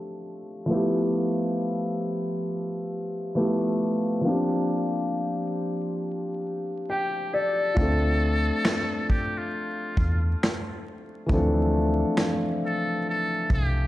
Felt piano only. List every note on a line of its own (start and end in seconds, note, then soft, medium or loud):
0.00 0.64 F3 medium
0.00 0.66 A3 medium
0.00 0.67 C4 medium
0.00 0.67 D4 medium
0.00 0.71 A4 medium
0.66 3.29 F3 medium
0.66 3.30 A3 medium
0.70 3.31 B3 medium
0.70 3.32 E4 medium
0.70 3.33 G4 medium
3.35 4.20 F3 medium
3.35 4.24 A3 medium
3.35 4.24 B3 medium
3.35 4.25 E4 medium
3.35 4.25 G4 medium
4.21 7.71 F3 medium
4.21 7.72 A#3 medium
4.21 7.73 C4 medium
4.27 7.74 D4 medium
4.27 7.75 G4 medium
6.90 7.30 G5 medium
7.34 7.74 D5 medium
7.74 11.25 A3 medium
7.74 11.26 C4 medium
7.74 11.24 F4 medium
7.80 11.27 D4 medium
7.80 11.28 A4 medium
11.26 11.36 E3 medium
11.26 13.87 A3 medium
11.26 13.87 C4 medium
11.32 13.87 F3 medium
11.32 13.87 D4 medium
11.32 13.87 A4 medium